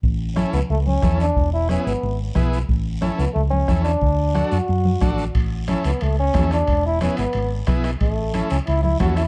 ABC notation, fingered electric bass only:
X:1
M:4/4
L:1/16
Q:1/4=181
K:A
V:1 name="Fingered electric bass" clef=bass
A,,,6 C,, z C,,4 E,,4 | E,,,6 G,,, z G,,,4 B,,,4 | A,,,6 C,, z C,,4 E,,4 | D,,6 F,, z F,,4 A,,,4 |
A,,,6 C,, z C,,4 E,,4 | E,,,6 G,,, z G,,,4 B,,,4 | A,,,6 C,, z C,,4 E,,4 |]